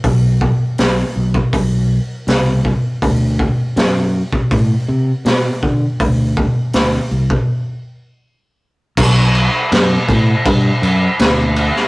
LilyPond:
<<
  \new Staff \with { instrumentName = "Fingered electric bass" } { \clef bass \time 4/4 \key b \phrygian \tempo 4 = 81 b,,4 b,,8 b,,8 b,,4 c,4 | d,4 fis,4 a,8 c8 b,8 d8 | d,4 d,8 c,8 r2 | b,,4 fis,8 a,8 g,8 fis,8 d,4 | }
  \new DrumStaff \with { instrumentName = "Drums" } \drummode { \time 4/4 <hho bd>8 bd8 <hho sn>8. bd16 <hho bd>4 <hho sn>8 bd8 | <hho bd>8 bd8 <hho sn>8. bd16 <hho bd>4 <hho sn>8 bd8 | <hho bd>8 bd8 <hho sn>8. bd16 r4 r4 | <cymc bd>8 cymc8 <cymc sn>8 <cymc bd>8 <cymc bd>8 cymc8 <cymc sn>8 cymc16 sn16 | }
>>